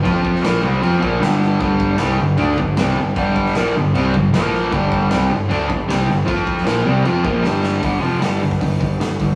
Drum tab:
CC |x---x---x---x---|x---x---x---x---|x---x---x---x---|x---x---x---x---|
HH |----------------|----------------|----------------|----------------|
SD |---oo-------o-o-|----o-------o---|---oo-------o-o-|----o-------o-o-|
BD |o-o-------o-----|o-o-------o-----|o-o-------o-----|o-o-------o-----|

CC |x---x---x-------|----------------|
HH |----------------|o-o-o-o-o-o-o-o-|
SD |---oo-------o-o-|----o--o----o---|
BD |o-o-------o-----|o------oo-o---o-|